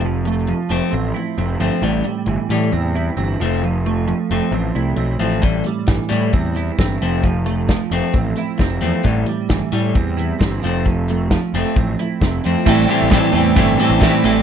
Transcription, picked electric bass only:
X:1
M:4/4
L:1/16
Q:1/4=133
K:Am
V:1 name="Picked electric bass" clef=bass
F,,,6 F,,, z A,,,2 z2 F,,,2 G,,, z | A,,,2 z2 G,,, z A,,2 E,,4 G,,,2 F,,,2- | F,,,6 F,,, z A,,,2 C,,2 B,,,2 A,,,2 | A,,,2 z2 G,,, z A,,2 E,,4 G,,,2 F,,,2- |
F,,,6 F,,, z A,,,2 z2 F,,,2 E,, z | A,,,2 z2 G,,, z A,,2 E,,4 G,,,2 F,,,2- | F,,,6 F,,, z A,,,2 z2 F,,,2 F,, z | A,,,2 z A,,,2 z E,,2 G,,,2 z A,,,2 z A,,,2 |]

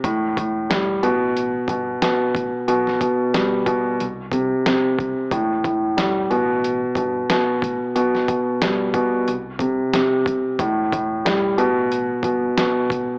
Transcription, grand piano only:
X:1
M:4/4
L:1/8
Q:"Swing 16ths" 1/4=91
K:Ador
V:1 name="Grand piano" clef=bass
A,, A,, G, B,,2 B,, B,,2 | B,, B,, G, B,, z C, C,2 | A,, A,, G, B,,2 B,, B,,2 | B,, B,, G, B,, z C, C,2 |
A,, A,, G, B,,2 B,, B,,2 |]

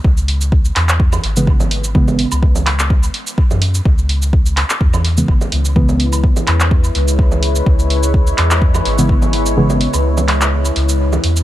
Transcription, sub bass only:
X:1
M:4/4
L:1/16
Q:"Swing 16ths" 1/4=126
K:C#m
V:1 name="Sub bass" clef=bass
C,,6 E,,4 G,,,6- | G,,,3 C,,6- C,, z3 F,,3 | C,,6- C,, z E,,4 G,,, z C,,2- | C,,4- C,, z E,,4 C,,6 |
C,,6 E,,4 G,,,6- | G,,,3 C,,6- C,, C,,4 E,, z |]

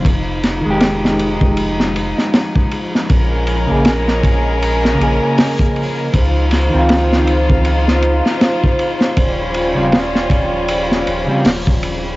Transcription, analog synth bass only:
X:1
M:4/4
L:1/16
Q:"Swing 16ths" 1/4=79
K:Fm
V:1 name="Analog synth bass" clef=bass
F,,,3 F,,,8 z4 z | B,,,3 B,,,6- B,,, B,,, z4 z | D,,3 D,,8 z4 z | E,,,3 E,,,6- E,,, E,,, z E,,,4 |]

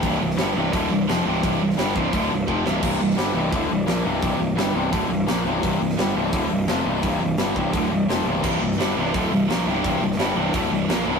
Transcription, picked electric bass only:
X:1
M:4/4
L:1/8
Q:1/4=171
K:Dblyd
V:1 name="Picked electric bass" clef=bass
C,,, C,,, G,,, C,,, =D,,, C,,, F,,, C,,, | C,,, C,,, G,,, C,,, =D,,, C,,, F,,, C,,, | C,,, C,,, G,,, C,,, =D,,, C,,, B,,, C,,, | C,,, C,,, G,,, C,,, =D,,, C,,, B,,, C,,, |
C,,, C,,, G,,, C,,, =D,,, C,,, F,,, C,,, | C,,, C,,, G,,, C,,, =D,,, C,,, F,,, C,,, | C,,, C,,, G,,, C,,, =D,,, C,,, B,,, C,,, | C,,, C,,, G,,, C,,, =D,,, C,,, B,,, C,,, |]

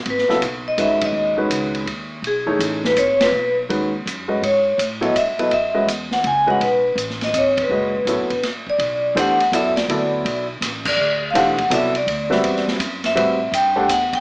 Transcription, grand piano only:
X:1
M:3/4
L:1/8
Q:"Swing" 1/4=165
K:G#phr
V:1 name="Grand piano"
z [C,F,B,EA] z2 [D,G,CFB]2- | [D,G,CFB] [D,G,CFB]3 z2 | z [E,A,DGc]3 z2 | z2 [D,G,CFB] z2 [G,CFBd] |
z3 [F,B,EAc] z [F,B,EAB] | z [G,CFBd] z3 [G,CFBd] | z6 | [G,CFBd] z [F,B,EAc] z3 |
[K:Bphr] z2 [E,A,DGc] z [F,B,EAd] z | [F,B,EAd]3 z3 | z2 [E,A,DGc] z [F,B,EAd] z | z [G,CFBe]3 z2 |
[G,CFBe] z2 [A,DGcf] z2 |]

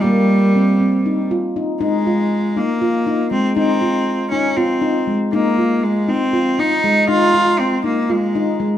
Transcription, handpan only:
X:1
M:7/8
L:1/8
Q:1/4=119
K:Fm
V:1 name="Handpan"
B,2 C C E F E | E F2 E F E A, | E F2 E F E A, | E F2 E F E A, |
E F2 E F E A, |]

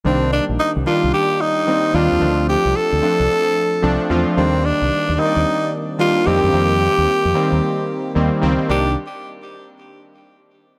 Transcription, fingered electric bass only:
X:1
M:4/4
L:1/16
Q:"Swing 16ths" 1/4=111
K:Cdor
V:1 name="Fingered electric bass" clef=bass
C,,3 B,,, z C,, z C,, z6 E,, E,, | D,,3 C,, z D,, z C,, z4 C,, z =E,, z | E,,3 C,, z E,, z E,, z6 F,, ^F,, | F,,3 E,, z F,, z E,, z4 E,, z _D,, z |
C,,2 z12 z2 |]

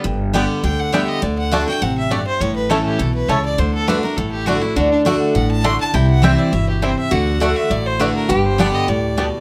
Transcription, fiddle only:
X:1
M:4/4
L:1/16
Q:1/4=204
K:G
V:1 name="Fiddle"
z8 g2 f2 e2 _e2 | d2 f2 a2 g2 f2 e2 d2 c2 | ^c2 B2 A2 G2 A2 B2 c2 d2 | c2 A2 B2 _B2 A2 G2 F2 E2 |
F2 D2 z4 f2 a2 c'2 a2 | g2 f2 e2 d2 e2 G2 c2 e2 | f6 e2 d2 c2 B2 _B2 | B2 c2 d2 _e2 d6- d z |]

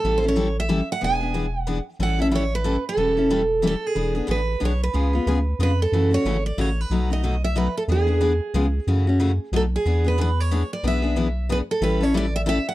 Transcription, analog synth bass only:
X:1
M:3/4
L:1/8
Q:"Swing" 1/4=183
K:Emix
V:1 name="Analog synth bass" clef=bass
A,,,6 | E,,,6 | A,,,6 | E,,,6 |
E,,,2 A,,,2 B,,,2 | C,,2 D,,2 ^E,,2 | F,,2 G,,,2 A,,,2 | B,,,6 |
E,,4 C,,2 | F,,4 B,,,2 | E,,6 | B,,,6 |
A,,,6 |]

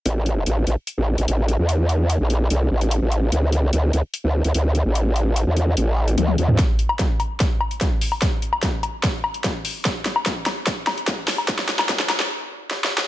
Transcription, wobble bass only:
X:1
M:4/4
L:1/16
Q:1/4=147
K:Aphr
V:1 name="Wobble bass" clef=bass
A,,,4 A,,,2 A,,, z2 A,,,2 A,,, A,,,3 E,,- | E,,4- E,, B,,,3 C,,2 A,,,3 A,,,3 | D,,4 D,,2 D,, z2 D,,2 D,, D,,3 A,,,- | A,,,4- A,,, E,,3 A,,,4 D,,2 E,,2 |
z16 | z16 | z16 | z16 |]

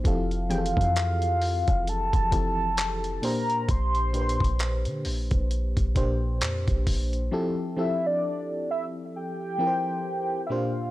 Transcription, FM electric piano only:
X:1
M:4/4
L:1/16
Q:"Swing 16ths" 1/4=66
K:F
V:1 name="FM electric piano"
[F,CEGA]2 [E,F,CG_A=A]4- [E,F,CG_A=A] z3 [F,CEGA]4 [B,,B,DGc]2- | [B,,B,DGc]2 [B,,B,DG=Bc]4- [_B,,B,DG=Bc] z3 [_B,,B,DGc]4 z2 | [F,CEGA]2 [F,CEGA]4- [F,CEGA] z3 [F,CEGBc]4 [B,,B,DGc]2 |]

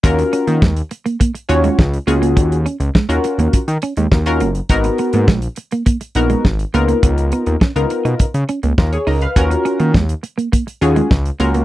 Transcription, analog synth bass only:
X:1
M:4/4
L:1/16
Q:1/4=103
K:Ebm
V:1 name="Analog synth bass" clef=bass
E,,2 z E, E,,2 z4 E,,2 D,,2 D,,2 | E,,3 D,, z E,, z E,, E, E, z E,, E,,2 G,,,2 | A,,,2 z A,, B,,,2 z4 B,,,2 A,,,2 D,,2 | D,,3 E,, z D,, z C, D, D, z D,, E,,2 D,,2 |
E,,2 z E, E,,2 z4 E,,2 D,,2 D,,2 |]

